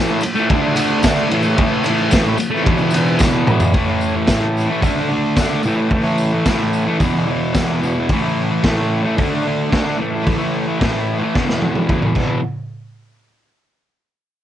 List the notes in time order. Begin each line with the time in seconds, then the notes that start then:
Already playing: A2 E3
0.08 A3
0.13 E3
0.21 muted distorted electric guitar stroke, ride, tambourine
0.35 A3, tambourine
0.40 E3
0.49 D3 A3, kick, ride
0.54 D4
0.62 D4
0.67 A3
0.75 D3 A3, ride, tambourine
0.80 D4
1.03 D3 A3, kick, snare, ride, tambourine
1.07 D4
1.29 A2 E3, ride, tambourine
1.34 A3
1.43 A3, tambourine
1.48 E3
1.57 A2 E3, kick, ride
1.61 A3
1.84 A2 E3, ride, tambourine
1.89 A3
1.98 tambourine
2.10 A2 E3, kick, snare, ride, tambourine
2.15 A3
2.24 A3
2.29 E3
2.38 muted distorted electric guitar stroke, ride, tambourine
2.51 A3
2.55 E3
2.64 E2 B2, kick, ride
2.69 E3
2.78 E3, tambourine
2.84 B2
2.91 E2, ride, tambourine
2.95 B2 E3
3.06 tambourine
3.19 E2 B2, kick, snare, tambourine
3.24 E3
3.47 E2 B2, mid tom, tambourine
3.52 E3
3.60 E3, floor tom, tambourine
3.66 B2
3.73 A2 E3 A3, kick, open hi-hat
3.86 A3
3.91 E3
4.01 tambourine
4.27 A2 E3, kick, snare, open hi-hat, tambourine
4.32 A3
4.41 A3
4.45 E3
4.57 tambourine
4.67 A3
4.71 E3
4.81 D3 A3, kick, open hi-hat, tambourine
4.86 D4
4.96 D4
5.01 A3
5.09 D3 A3
5.14 D4
5.36 D3 A3, kick, snare, open hi-hat, tambourine
5.41 D4
5.49 D4
5.54 A3
5.63 A2 E3, tambourine
5.68 A3
5.76 A3
5.81 E3
5.90 A2 E3, kick, open hi-hat
5.94 A3
6.04 A3
6.08 E3
6.18 tambourine
6.45 A2 E3, kick, snare, open hi-hat, tambourine
6.50 A3
6.58 A3
6.63 E3
6.73 tambourine
6.86 A3
6.91 E3
6.99 E2 B2, kick, open hi-hat, tambourine
7.04 E3
7.14 E3
7.19 B2
7.27 E2 B2
7.31 E3
7.54 E2 B2, kick, snare, open hi-hat, tambourine
7.58 E3
7.67 E3
7.72 B2
7.82 E2 B2, tambourine
7.86 E3
7.95 E3
7.99 B2
8.09 A2 E3, kick, open hi-hat
8.14 A3
8.22 A3
8.27 E3
8.63 A2 E3, kick, snare, open hi-hat
8.68 A3
8.77 A3
8.81 E3
9.03 A3
9.07 E3
9.17 D3 A3, kick, open hi-hat
9.22 D4
9.30 D4
9.35 A3
9.43 D3 A3
9.48 D4
9.70 D3 A3, kick, snare, open hi-hat
9.75 D4
9.85 D4
9.90 A3
9.98 A2 E3
10.02 A3
10.12 A3
10.17 E3
10.25 A2 E3, kick, open hi-hat
10.30 A3
10.38 A3
10.43 E3
10.79 A2 E3, kick, snare, open hi-hat
10.84 A3
10.92 A3
10.97 E3
11.19 A3
11.25 E3
11.35 E2 B2, kick, snare
11.40 E3
11.49 B2 E3, snare
11.61 E2 B2, high tom
11.66 E3
11.75 high tom
11.88 E2 B2, kick, mid tom
11.94 E3
12.01 E3, mid tom
12.06 B2
12.15 E2 B2 E3, kick, crash